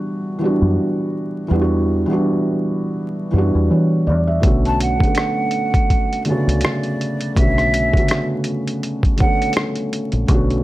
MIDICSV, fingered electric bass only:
0, 0, Header, 1, 2, 480
1, 0, Start_track
1, 0, Key_signature, 2, "minor"
1, 0, Tempo, 731707
1, 987, Time_signature, 4, 2, 24, 8
1, 6977, End_track
2, 0, Start_track
2, 0, Title_t, "Fingered electric bass"
2, 0, Program_c, 0, 33
2, 406, Note_on_c, 0, 42, 80
2, 503, Note_off_c, 0, 42, 0
2, 990, Note_on_c, 0, 40, 96
2, 1343, Note_off_c, 0, 40, 0
2, 2188, Note_on_c, 0, 42, 85
2, 2316, Note_off_c, 0, 42, 0
2, 2328, Note_on_c, 0, 40, 77
2, 2424, Note_off_c, 0, 40, 0
2, 2431, Note_on_c, 0, 52, 86
2, 2671, Note_on_c, 0, 40, 83
2, 2681, Note_off_c, 0, 52, 0
2, 2896, Note_off_c, 0, 40, 0
2, 2909, Note_on_c, 0, 35, 94
2, 3263, Note_off_c, 0, 35, 0
2, 4247, Note_on_c, 0, 37, 76
2, 4343, Note_off_c, 0, 37, 0
2, 4833, Note_on_c, 0, 35, 100
2, 5185, Note_off_c, 0, 35, 0
2, 6645, Note_on_c, 0, 34, 77
2, 6742, Note_off_c, 0, 34, 0
2, 6748, Note_on_c, 0, 35, 104
2, 6977, Note_off_c, 0, 35, 0
2, 6977, End_track
0, 0, End_of_file